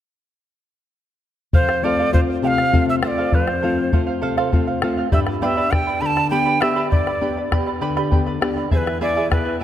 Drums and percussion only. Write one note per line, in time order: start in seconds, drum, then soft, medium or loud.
1.53 bombo low medium
1.69 bombo rim medium
1.83 bombo rim soft
2.14 bombo low medium
2.58 bombo rim soft
2.74 bombo low medium
2.89 bombo rim soft
3.03 bombo rim medium
3.32 bombo low medium
3.48 bombo rim soft
3.63 bombo rim soft
3.93 bombo low medium
4.38 bombo rim soft
4.53 bombo low medium
4.68 bombo rim soft
4.82 bombo rim medium
5.12 bombo low medium
5.27 bombo rim soft
5.42 bombo rim soft
5.73 bombo rim medium
5.73 bombo low medium
6.17 bombo rim soft
6.47 bombo rim soft
6.62 bombo rim medium
6.92 bombo low medium
7.07 bombo rim soft
7.52 bombo rim medium
7.52 bombo low medium
7.67 bombo rim soft
7.82 bombo rim soft
7.97 bombo rim soft
8.12 bombo low medium
8.27 bombo rim soft
8.42 bombo rim medium
8.71 bombo low medium
8.87 bombo rim medium
9.02 bombo rim soft
9.32 bombo rim medium
9.32 bombo low medium